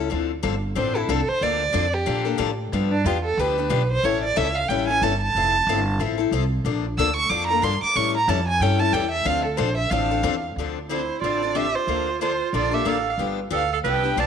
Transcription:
Already playing: E4 A4
0.00 C#4
0.10 D2 D3 F3 C4 D4 A4
0.43 G1 D3 F3 C4 D4 A4
0.75 A1 D3 F3 C4 D4 A4 C5
0.95 C4 D4 E4 A4
1.09 C2 D3 F3 C4 D4 A4
1.29 C5, muted upright bass stroke
1.41 D2 D3 F3 A#3 D4 A4 D5
1.73 F2 D3 F3 A#3 D4 A4
1.94 G4
2.06 A#2 D3 F3 A#3 D4 A4
2.25 A#3 D4 A4
2.38 A2 D3 F3 A#3 D4 A4
2.72 G2 D3 F3 B3 D4 G4
2.92 D4
3.04 E2 D3 F3 B3 D4 F4 G4
3.25 A4
3.37 D2 D3 F3 B3 D4 G4 B4
3.58 B3 D4 G4
3.69 B1 D3 F3 B3 D4 G4
3.92 C5
4.03 A1 E3 G3 C#4 E4 A4 C#5
4.24 D5
4.36 C#2 E3 G3 C#4 E4 A4 E5
4.55 F5
4.68 A1 E3 G3 C#4 E4 A4 G5
4.88 C#4 E4 A4 G#5
5.02 G1 E3 G3 C#4 E4 A4 A5
5.22 A5
5.35 F1 F3 C4 E4 A4
5.67 G1 F3 C4 E4 A4
5.99 A1 F3 C4 E4 A4
6.18 C4 E4 A4
6.31 C2 F3 C4 E4 A4
6.64 A#1 D3 F3 A#3 D4 A4
6.97 D2 D3 F3 A#3 D4 A4 E6
7.16 C#6
7.29 F2 D3 F3 A#3 D4 A4 D6
7.47 D4 A4 A#5
7.52 A#3
7.62 G2 D3 F3 A#3 D4 A4 C6
7.82 D6, muted upright bass stroke
7.96 A2 E3 G3 C#4 E4 A4 C#6
8.17 A#5
8.28 F2 E3 G3 C#4 E4 A4 A5
8.48 G#5
8.60 G2 E3 G3 C#4 E4 A4 G5
8.80 C#4 E4 A4 A5
8.92 E2 E3 G3 C#4 E4 A4 G5
9.11 E5
9.24 D2 D3 F3 C4 D4 A4 F5
9.45 A4
9.57 A#1 D3 F3 C4 D4 A4 C5
9.77 E5
9.90 A1 D3 F3 C4 D4 A4 F5
10.11 C4 D4 A4
10.23 E2 D3 F3 C4 D4 A4
10.56 D2 D3 F3 C4 A4
10.60 D4
10.89 D3 F3 C4 D4 E4 A4 C5
11.21 A1 D3 F3 C4 D4 F4 D5
11.25 A4
11.43 C4 D4 A4
11.55 D3 F3 C4 D4 G4 A4 E5
11.74 F4 C5
11.87 D2 D3 F3 A#3 D4 A4
12.21 D3 F3 A#3 D4 F4 A4 C5
12.53 A#1 D3 F3 A#3 D4 F4 A4 D5
12.71 A#3 D4 G4 A4 E5
12.85 A1 D3 F3 A#3 D4 A4
12.89 F5
13.18 G1 D3 F3 B3 D4 G4
13.50 D2 D3 F3 B3 D4 G4 A4
13.55 F5
13.73 A4 F5
13.84 C2 D3 F3 B3 D4 G4 B4
13.89 G5
14.03 B3 D4 G4
14.17 B1 D3 F3 B3 D4 G4 D5 A5

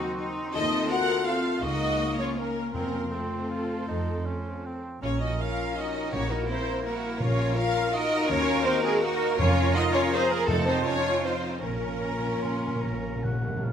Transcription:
Already playing: D#3 F#3 C4 D#4 F#4 C6
0.01 C5
0.19 D#4 C6
0.38 F#4
0.53 D#2 D#3 A3 C4 D#4 F4 A4 D#5
0.71 C4
0.89 F4 F#4 A#4 F#5
1.08 C5
1.27 C4 F4 A4 F5 A5
1.46 F4
1.62 C#2 C#3 A#3 D#4 F#4 D#5 C#6
1.80 C#4
1.99 F4
2.18 C#4 F4 C#5
2.37 A#3 C#4 A#4 A#5
2.56 F4
2.73 F2 A#3 C4 C#4 F4 A#4 C6
2.92 F3
3.10 A3 C4 A4
3.31 F4
3.51 F4
3.70 C4
3.88 F2 D#4
4.07 F3
4.26 C#4 C5
4.46 F4
4.66 C4 C5
4.85 C4
5.00 A#1 A#2 C#4 F4 C#5 A#5
5.20 F3 D#4 F#4 D#5
5.39 C#4 F4 A#4 F5
5.59 F4
5.77 D#4 F#4 C#5 D#5
5.96 A#4
6.11 A#1 A#2 A#3 C#4 E4 F#4 G4 C#5
6.29 G3 A#3 D#4 A#4
6.47 C4 E4 C5
6.67 G4
6.84 A#3 E4 F#4 A#4 E5
7.20 A#1 A#2 C#4 F4 C#5 A#5
7.38 A#3
7.56 C#4 F4 A#4 F5
7.93 D#4 F#4 A#4 D#5
8.11 A#4
8.27 D#2 D#3 A#3 C#4 F4 F#4 C#5
8.46 A#3
8.64 C4 D#4 C5
8.81 G#3 C4 F#4 G#4
9.01 A#3 D#4 F#4 A#4 F#5
9.21 A#4
9.37 F2 F3 C#4 F4 C#5 A#5
9.74 D#4 F#4 A#4 D#5
9.93 C#4 F4 C#5
10.11 C4 D#4 G#4 C5 A#5
10.30 A#3 C#4 A#4
10.46 F2 F3 A3 C4 D#4 A4 A5
10.64 C4 D#4 C5
10.84 C#4 F4 A4 C#5
11.04 D#5
11.23 C4 D#4 C5 F5
11.43 A4
11.60 A#1 A#2 A#3 C#4 F4 A#4 A#5
11.70 A#2
11.78 A#2 C#4
11.86 A#2
11.94 A#2
12.01 A#2 A#4 A#5
12.10 A#2
12.19 A#2 C#5
12.27 A#2
12.35 A#2
12.42 A#2 F5 C6
12.52 A#2
12.60 A#2 A#4
12.68 A#2
12.75 A#2
12.81 A#1 A#2 A#5
12.92 A#2
13.00 A#2 C#4
13.07 A#2
13.16 A#2
13.22 A#2 A#4 F#5
13.33 A#2
13.41 A#2 C#5
13.48 A#2
13.57 A#2
13.63 A#2 F5

